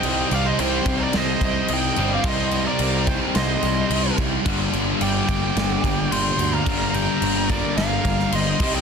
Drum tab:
CC |x-x-x-x-x-x-x-x-|x-x-x-x-x-x-x-x-|x-x-x-x-x-x-x-x-|x-x-x-x-x-x-x-x-|
SD |--------o-------|--------o-------|--------o-------|--------o--o----|
BD |------o---o-----|o-----o-------o-|o-----o---o-----|o-----o---o---o-|